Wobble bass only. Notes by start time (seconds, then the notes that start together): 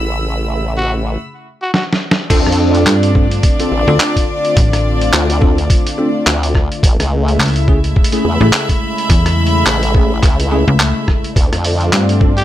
Already playing: A1
2.30 D2
2.47 F2
3.72 A1
5.13 D2
6.27 D2
6.83 A1
6.99 C#2
8.25 E2
9.66 A1
10.23 C#2
11.36 D2
11.52 F2